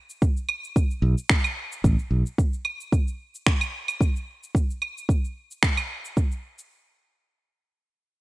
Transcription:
0.10 shaker
0.22 kick, shaker
0.37 shaker
0.49 claves
0.64 shaker
0.76 kick, shaker
0.91 shaker
1.02 fingered electric bass B1
1.18 shaker
1.29 finger snap, kick, shaker
1.44 claves, shaker
1.72 shaker
1.84 fingered electric bass A1, kick, shaker
1.99 shaker
2.11 fingered electric bass B1
2.26 shaker
2.38 kick, shaker
2.53 shaker
2.65 claves
2.80 shaker
2.92 kick, shaker
3.08 shaker
3.35 shaker
3.47 finger snap, kick, shaker
3.61 claves, shaker
3.88 claves, shaker
4.01 kick, shaker
4.16 shaker
4.43 shaker
4.55 kick, shaker
4.71 shaker
4.82 claves
4.98 shaker
5.09 kick, shaker
5.25 shaker
5.51 shaker
5.63 finger snap, kick, shaker
5.77 claves, shaker
6.05 shaker
6.17 kick, shaker
6.32 shaker
6.59 shaker

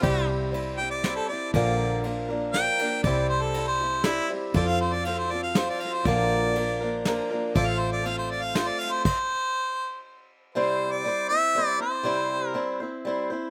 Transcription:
0.01 fingered electric bass C2, steel-string acoustic guitar C3 G3 C4 E4 G4, grand piano E4 G4 C5, harmonica G4, kick, ride
0.52 steel-string acoustic guitar G3 C4 E4 G4, ride
0.78 steel-string acoustic guitar C4 E4 G4, harmonica G5
0.91 harmonica D5
1.03 steel-string acoustic guitar G3 C4 E4 G4, snare, ride
1.16 harmonica A4
1.29 steel-string acoustic guitar E4 G4, harmonica D5
1.33 steel-string acoustic guitar C4
1.54 fingered electric bass A#1, steel-string acoustic guitar A#2 D3 F3 A#3 D4 A#4, grand piano F4 A#4 D5, harmonica D5, kick, ride
2.03 steel-string acoustic guitar F3 A#3 D4 A#4, ride
2.29 steel-string acoustic guitar F3 A#3 D4 A#4
2.53 steel-string acoustic guitar F3 A#3 D4 A#4, harmonica G5, snare, ride
2.79 steel-string acoustic guitar F3 A#3 D4 A#4, ride
3.03 fingered electric bass C2, steel-string acoustic guitar C3 G3 C4 E4 G4, grand piano E4 G4 C5, harmonica D5, kick, ride
3.29 harmonica C5
3.42 harmonica A4
3.54 steel-string acoustic guitar G3 C4 E4, ride
3.59 steel-string acoustic guitar G4
3.68 harmonica C5
3.81 steel-string acoustic guitar C4 E4 G4
4.04 steel-string acoustic guitar G3 C4 E4, harmonica E4, snare, ride
4.08 steel-string acoustic guitar G4
4.30 grand piano E4 G4 C5
4.54 fingered electric bass F2, steel-string acoustic guitar F3 C4 F4, grand piano F4 A4 C5, harmonica D5, kick, ride
4.58 steel-string acoustic guitar A4
4.68 harmonica F5
4.81 harmonica C5
4.94 harmonica D5
5.05 steel-string acoustic guitar F3 C4 F4, harmonica F5, ride
5.09 steel-string acoustic guitar A4
5.19 harmonica C5
5.31 steel-string acoustic guitar C4 F4 A4, harmonica D5
5.43 harmonica F5
5.55 steel-string acoustic guitar F3 C4 F4 A4, harmonica C5, snare, ride
5.69 harmonica D5
5.80 harmonica F5, ride
5.94 harmonica C5
6.04 fingered electric bass A#1, steel-string acoustic guitar A#2 D3 F3 A#3 D4, grand piano F4 A#4 D5, harmonica D5, kick, ride
6.08 steel-string acoustic guitar A#4
6.56 steel-string acoustic guitar F3 A#3 D4 A#4, ride
6.80 steel-string acoustic guitar F3 A#3 D4 A#4
7.05 steel-string acoustic guitar F3 A#3 D4 A#4, grand piano A#5, snare, ride
7.31 steel-string acoustic guitar F3 A#3 D4 A#4
7.54 fingered electric bass A1, steel-string acoustic guitar A3 C4 F4 A4, grand piano F4 A4 C5, harmonica D5, kick, ride
7.67 harmonica F5
7.79 harmonica C5
7.93 harmonica D5
8.04 steel-string acoustic guitar A3 C4 F4 A4, harmonica F5, ride
8.19 harmonica C5
8.31 harmonica D5
8.43 harmonica F5
8.55 steel-string acoustic guitar A3 C4 F4 A4, harmonica C5, snare, ride
8.67 harmonica D5
8.79 harmonica F5, ride
8.92 harmonica C5
9.05 harmonica C5, kick, crash
10.55 steel-string acoustic guitar C3 G3 C4 E4 C5, harmonica C5
10.92 harmonica D5
11.04 steel-string acoustic guitar G3 C4 E4 C5
11.29 steel-string acoustic guitar E4 C5, harmonica E5
11.34 steel-string acoustic guitar C4
11.55 steel-string acoustic guitar G3 C4 E4 C5
11.78 steel-string acoustic guitar C4 E4 C5, harmonica C5
12.03 steel-string acoustic guitar C3 G3 C4 E4 C5
12.48 harmonica A#4
12.54 steel-string acoustic guitar G3 C4 E4 C5
12.80 steel-string acoustic guitar C4 E4 C5
13.05 steel-string acoustic guitar G3 C4 E4 C5
13.30 steel-string acoustic guitar C4 E4 C5

